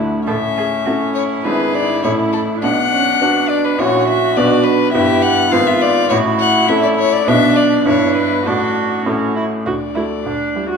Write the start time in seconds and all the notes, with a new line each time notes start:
Already playing: D2 A2 A3 D4 E4 F#4
0.25 A1 A2 C#4 A4 E5
0.57 G#4
0.86 C#4 E4 F#4 A4
1.15 E4 C#5
1.43 G#1 G#2 D4 E4 G#4 B4
1.74 D5
2.03 A1 A2 C#4 E4 A4 C#5
2.33 A4
2.62 B1 B2 D4 F#5
2.92 C#4
3.21 B3 D4 F#4
3.49 D5
3.65 B4
3.78 A#1 A#2 C#4 E4 F#4 C#5
4.08 E5
4.36 B1 B2 B3 D4 F#4 B4 D5
4.64 B4
4.93 G1 G2 B3 E4 G4 B4 E5
5.22 F#5
5.51 G#1 G#2 B3 F4 B4 F5
5.67 E5
5.82 D5
6.09 A1 A2 E4 F#4 C#5
6.40 F#5
6.67 C#4 E4 A4 E5
6.82 D5
6.99 C#5
7.12 D5
7.27 B1 B2 B3 D4 F#4 E5
7.56 D5
7.86 G1 G2 B3 D4 E4 C#5
8.17 B4
8.45 A1 A2 D4 F#4 A4
9.06 A1 A2 C#4 E4 A4
9.36 E4
9.66 D2 F#4 D5
9.95 A3 E4 F#4 A4
10.25 D2 D4
10.56 G3 E4 G4
10.70 F#4